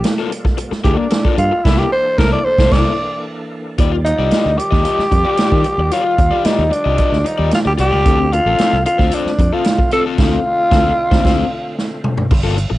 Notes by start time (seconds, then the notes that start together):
Already playing: G3 A#3 F4 A4
0.04 muted overdriven electric guitar stroke, snare, closed hi-hat
0.18 A#3 F4 A4
0.31 muted overdriven electric guitar stroke, closed hi-hat
0.45 muted overdriven electric guitar stroke, kick, snare
0.58 muted overdriven electric guitar stroke, closed hi-hat
0.72 muted overdriven electric guitar stroke, muted fingered electric bass stroke, snare
0.84 D2 A#3 F4 G4 A4, kick, closed hi-hat
0.97 D4, muted overdriven electric guitar stroke
1.10 muted overdriven electric guitar stroke, snare, closed hi-hat
1.25 A#3 F4 A4, muted fingered electric bass stroke, kick
1.38 G2 F4, muted overdriven electric guitar stroke, closed hi-hat
1.52 muted overdriven electric guitar stroke
1.64 C2 E3 A#3 D4 E4 A4, kick, snare, crash
1.78 G4
1.92 C5
2.18 C2 A#3 E4 A4 A#4, kick, snare
2.33 D5
2.45 C5
2.58 C2 A#3 E4 A4, kick, snare
2.71 C2 A#3 E4 A4 D5, kick, snare, crash
3.78 D#2 D#3 G3 F4 G4 D5, kick, closed hi-hat
3.92 muted overdriven electric guitar stroke
4.04 D#4, muted overdriven electric guitar stroke, closed hi-hat
4.18 C2 F4 G4 D5
4.31 F4 G4 D5, muted fingered electric bass stroke, snare, closed hi-hat
4.46 D2
4.57 G4, muted overdriven electric guitar stroke, closed hi-hat
4.71 D#2 F4 G4 D#5, kick, snare
4.84 F4 G4 D#5, closed hi-hat
4.98 muted fingered electric bass stroke, snare
5.11 F2, muted overdriven electric guitar stroke, kick, closed hi-hat
5.25 F4 G4 D5
5.37 F4 G4 D5, muted fingered electric bass stroke, snare, closed hi-hat
5.52 D#3, kick
5.64 muted overdriven electric guitar stroke, closed hi-hat
5.78 D#2, muted overdriven electric guitar stroke
5.91 F4 G4 D5, closed hi-hat
6.05 muted overdriven electric guitar stroke
6.18 D#2, muted overdriven electric guitar stroke, kick, closed hi-hat
6.31 F4 G4 D5
6.44 D#4 F4 G4 D5, muted fingered electric bass stroke, snare, closed hi-hat
6.59 D#2
6.71 D4, muted overdriven electric guitar stroke, closed hi-hat
6.84 C2 F4 G4 D#5
6.98 F4 G4 D#5, kick, closed hi-hat
7.12 D2, snare
7.25 D#4, muted overdriven electric guitar stroke, closed hi-hat
7.38 D#2 F4 G4 D5
7.51 F4, muted overdriven electric guitar stroke, snare, closed hi-hat
7.65 D2 G4, muted overdriven electric guitar stroke
7.78 C2 F4 G4 D5, closed hi-hat
7.92 C#2 F4 G4 D5
8.05 D2 D3 A3 C4 F4 A4, kick, closed hi-hat
8.19 muted overdriven electric guitar stroke
8.33 F4, muted overdriven electric guitar stroke, closed hi-hat
8.46 A1 C4 F4 A4
8.58 C4 F4 A4, muted fingered electric bass stroke, snare, closed hi-hat
8.73 C2
8.86 F4, muted overdriven electric guitar stroke, closed hi-hat
8.98 D2 C4 F4 C5, kick, snare
9.11 C4 D4 F4 C5, closed hi-hat
9.26 muted fingered electric bass stroke, snare
9.38 F2, muted overdriven electric guitar stroke, kick, closed hi-hat
9.53 C4 F4 A4
9.64 muted overdriven electric guitar stroke, snare, closed hi-hat
9.79 muted overdriven electric guitar stroke, kick
9.91 C4 F4 A4, closed hi-hat
10.06 C4 F4 A4
10.18 D2 C4 F4 A4, kick, snare, crash
10.71 D2 C4 F4 A4, kick, snare
11.11 D2 C4 F4 C5, kick, snare
11.24 D2 C4 F4 C5, kick, snare, crash
11.78 snare
12.04 mid tom
12.17 floor tom
12.31 G1, muted overdriven electric guitar stroke, kick, crash
12.44 A#3 F4 A4
12.57 muted overdriven electric guitar stroke, closed hi-hat
12.70 A#1, muted overdriven electric guitar stroke